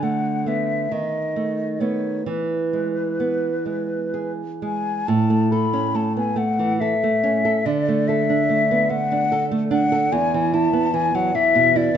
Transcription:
Already playing: nylon-string guitar D3
0.03 nylon-string guitar A3, flute F#5
0.46 nylon-string guitar A3 B3, flute E5
0.91 nylon-string guitar D#3, flute D#5
1.36 nylon-string guitar A3
1.80 nylon-string guitar A3 B3, flute C#5
2.26 nylon-string guitar E3, flute B4
2.73 nylon-string guitar G#3
3.20 nylon-string guitar B3
3.66 nylon-string guitar G#3
4.14 nylon-string guitar G#4
4.62 nylon-string guitar G#3, flute G#5
5.07 nylon-string guitar A2, flute A5
5.30 nylon-string guitar A3
5.51 nylon-string guitar A4, flute B5
5.73 nylon-string guitar C#4
5.94 nylon-string guitar A3, flute A5
6.17 nylon-string guitar B3, flute G#5
6.36 nylon-string guitar A3, flute F#5
6.59 nylon-string guitar E3
6.80 nylon-string guitar A4, flute E5
7.04 nylon-string guitar A3
7.24 nylon-string guitar C#4
7.45 nylon-string guitar A4
7.66 nylon-string guitar D3, flute D5
7.88 nylon-string guitar A3
8.08 nylon-string guitar A4, flute E5
8.30 nylon-string guitar D4
8.49 nylon-string guitar A3
8.71 nylon-string guitar B3
8.90 nylon-string guitar A3, flute F#5
9.12 nylon-string guitar D4
9.32 nylon-string guitar A4
9.51 nylon-string guitar A3
9.71 nylon-string guitar D4, flute F#5
9.92 nylon-string guitar A4
10.12 nylon-string guitar E2, flute G#5
10.34 nylon-string guitar E3
10.54 nylon-string guitar E4, flute A5
10.73 nylon-string guitar B3
10.94 nylon-string guitar E3, flute G#5
11.15 nylon-string guitar F#3, flute F#5
11.35 nylon-string guitar E3, flute E5
11.55 nylon-string guitar B2
11.76 nylon-string guitar E4, flute D5

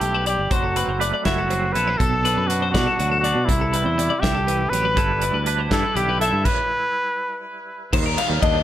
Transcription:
Already playing: clean electric guitar D4 E4, trumpet G4
0.00 fingered electric bass B1, clean electric guitar A3 G4, closed hi-hat
0.15 clean electric guitar B4
0.26 clean electric guitar G3 D5, trumpet G4, closed hi-hat
0.39 fingered electric bass G1
0.51 fingered electric bass F#1, clean electric guitar F#3 C5, trumpet F#4, kick, closed hi-hat
0.64 clean electric guitar A4
0.76 clean electric guitar C4 B4, closed hi-hat
0.88 fingered electric bass F#1, clean electric guitar C5
0.99 clean electric guitar A3 B4 D5, closed hi-hat
1.14 clean electric guitar D5
1.25 fingered electric bass F#1, clean electric guitar E4 E5, trumpet F#4, kick, snare, closed hi-hat
1.38 clean electric guitar A4
1.50 clean electric guitar F#3 C4 C5, closed hi-hat
1.73 fingered electric bass A#1, clean electric guitar E4 A4, trumpet B4, closed hi-hat
1.88 clean electric guitar C5
1.98 fingered electric bass B1, clean electric guitar B2 A4, trumpet A4, kick, closed hi-hat
2.25 clean electric guitar D4 B4, closed hi-hat
2.37 fingered electric bass F#2, clean electric guitar B4
2.47 clean electric guitar B3 D4, trumpet F#4, closed hi-hat
2.62 clean electric guitar C5
2.71 fingered electric bass B2, trumpet F#4, clean electric guitar D5, kick
2.75 clean electric guitar D4, snare, closed hi-hat
2.87 clean electric guitar A4
2.99 fingered electric bass D2, clean electric guitar F#3 D4 F#4, closed hi-hat
3.11 clean electric guitar A4
3.20 trumpet F#4, clean electric guitar D5
3.24 clean electric guitar D4, closed hi-hat
3.35 fingered electric bass B2
3.45 fingered electric bass C2, clean electric guitar C3 C5, trumpet E4, kick, closed hi-hat
3.61 clean electric guitar A4
3.73 clean electric guitar G3 B4, closed hi-hat
3.85 fingered electric bass E2, clean electric guitar C5
3.98 clean electric guitar G3 D5, closed hi-hat
4.10 clean electric guitar D5
4.20 fingered electric bass C2, clean electric guitar D3 E5, trumpet G4, kick
4.24 snare, closed hi-hat
4.35 clean electric guitar A4
4.47 clean electric guitar E3 B4, closed hi-hat
4.70 fingered electric bass A1, clean electric guitar F#3 G4, trumpet B4, closed hi-hat
4.85 clean electric guitar B4
4.96 fingered electric bass G1, clean electric guitar G3 D4 E4 A4, kick, closed hi-hat
5.21 clean electric guitar E4 B4, closed hi-hat
5.33 fingered electric bass D2, clean electric guitar B4
5.46 clean electric guitar D4 B4, closed hi-hat
5.59 clean electric guitar C5
5.71 fingered electric bass G2, clean electric guitar E4 D5, trumpet A4, kick, snare, closed hi-hat
5.84 clean electric guitar B4
5.95 fingered electric bass B1, clean electric guitar D3 E4 G4, trumpet G4, closed hi-hat
6.09 clean electric guitar B4
6.20 clean electric guitar E4 E5, trumpet A4, closed hi-hat
6.33 fingered electric bass G2
6.45 trumpet B4, kick, crash
7.93 fingered electric bass D#2, clean electric guitar D#3 C5, kick, crash
8.06 clean electric guitar A#4
8.18 clean electric guitar G3 F5, ride
8.30 fingered electric bass D#2
8.42 fingered electric bass D#2, clean electric guitar D4 D#5, kick, ride

